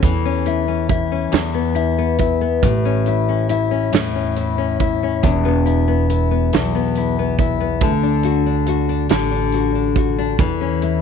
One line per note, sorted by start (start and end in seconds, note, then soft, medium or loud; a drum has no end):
0.00 1.28 E2 loud
0.00 3.54 E3 medium
0.00 0.12 C#4 medium
0.00 0.11 F#4 medium
0.00 kick loud
0.00 closed hi-hat medium
0.25 0.67 C#4 medium
0.46 0.89 E4 medium
0.46 closed hi-hat soft
0.68 1.11 C#4 medium
0.89 1.75 E4 medium
0.89 kick loud
0.89 closed hi-hat medium
1.12 1.42 C#4 medium
1.32 2.62 E2 medium
1.32 2.59 E2 medium
1.32 snare loud
1.32 closed hi-hat medium
1.54 1.97 B3 medium
1.75 2.19 E4 medium
1.75 closed hi-hat medium
1.98 2.40 B3 medium
2.18 3.07 E4 medium
2.18 kick medium
2.18 closed hi-hat medium
2.41 2.72 B3 medium
2.62 3.89 A1 loud
2.62 3.91 A2 medium
2.62 kick loud
2.62 closed hi-hat loud
2.85 3.28 C#4 medium
3.06 3.49 E4 medium
3.06 closed hi-hat soft
3.29 3.70 C#4 medium
3.49 4.36 E4 medium
3.49 closed hi-hat medium
3.71 4.14 C#4 medium
3.93 5.20 E2 medium
3.93 5.23 A2 medium
3.93 snare loud
3.93 closed hi-hat medium
4.15 4.57 C#4 medium
4.36 4.80 E4 medium
4.36 closed hi-hat medium
4.58 5.02 C#4 medium
4.80 5.65 E4 medium
4.80 kick medium
4.80 closed hi-hat medium
5.03 5.33 C#4 medium
5.23 6.49 E1 loud
5.23 6.52 E2 medium
5.23 kick loud
5.23 closed hi-hat medium
5.45 5.87 B3 medium
5.66 6.09 E4 medium
5.66 closed hi-hat soft
5.88 6.30 B3 medium
6.10 6.96 E4 medium
6.10 closed hi-hat medium
6.31 6.74 B3 medium
6.53 7.78 B1 medium
6.53 7.90 E2 medium
6.53 snare loud
6.53 closed hi-hat medium
6.75 7.18 B3 medium
6.95 7.38 E4 medium
6.95 closed hi-hat medium
7.19 7.59 B3 medium
7.38 7.90 E4 medium
7.38 kick medium
7.38 closed hi-hat medium
7.60 7.90 B3 medium
7.81 9.06 D2 loud
7.81 9.09 D3 medium
7.81 kick loud
7.81 closed hi-hat medium
8.03 8.45 D4 medium
8.23 8.67 F#4 medium
8.23 closed hi-hat medium
8.46 8.88 D4 medium
8.66 9.53 F#4 medium
8.66 closed hi-hat medium
8.89 9.31 D4 medium
9.09 10.35 A1 medium
9.09 10.39 D3 medium
9.09 snare loud
9.09 closed hi-hat medium
9.32 9.74 D4 medium
9.52 9.96 F#4 medium
9.52 closed hi-hat medium
9.75 10.17 D4 medium
9.96 10.49 F#4 medium
9.96 kick loud
9.96 closed hi-hat medium
10.19 10.48 D4 medium
10.39 11.02 E2 loud
10.39 11.02 E3 medium
10.39 kick loud
10.39 closed hi-hat medium
10.61 11.02 C#4 medium
10.82 11.02 E4 medium
10.82 closed hi-hat soft